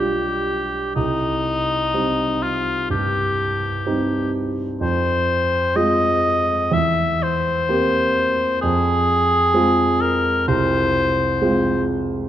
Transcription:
Already playing: B1 G4
0.00 G3 D4 F4
0.96 C2 D#4
1.94 G3 C4 D#4
2.43 F4
2.90 G2 G4
3.86 G3 C4 D#4
4.81 F2 C5
5.76 G#3 C4 F4 D#5
6.71 E2 E5
7.23 C5
7.69 A#3 C4 G4
8.62 F2 G#4
9.54 G#3 C4 F4
10.01 A#4
10.48 C2 C5
11.42 G#3 C4 F4

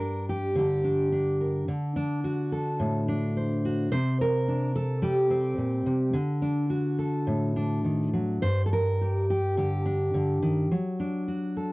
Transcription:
Already playing: G2 G3 A#4
0.00 D4
0.29 G4
0.55 D3 G4
0.84 D4
1.12 D4
1.41 A#4
1.68 D3
1.96 D4
2.24 F#4
2.52 A4
2.80 A2
3.08 D4
3.37 C5
3.65 F#4
3.92 C3 C5
4.21 A#4
4.48 D4
4.76 A4
5.02 G3 G4
5.30 C4
5.58 A#2
5.86 C3
6.13 D3
6.42 D4
6.70 F#4
6.99 A4
7.27 A2
7.56 D4
7.84 D#3
8.13 F#3
8.42 G2 C5
8.66 A4
8.73 A#4
9.01 G4
9.30 G4
9.57 D3 G4
9.86 D4
10.14 D3
10.43 D#3
10.71 F#3
11.00 D4
11.28 F#4
11.57 A4

